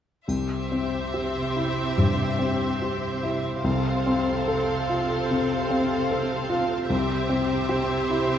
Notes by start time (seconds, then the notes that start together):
0.27 C2 C3 C4 G4 C5 E5, triangle
0.72 C4
1.14 G4
1.56 E4
1.98 G2
2.39 C4
2.82 G4
3.23 E4
3.63 C2 C3 C4 A4 C5 F5
4.06 C4
4.48 A4
4.89 F4
5.31 C3
5.70 C4
6.11 A4
6.49 F4
6.89 C2 C3 C4 G4 C5 E5
7.29 C4
7.69 G4
8.10 E4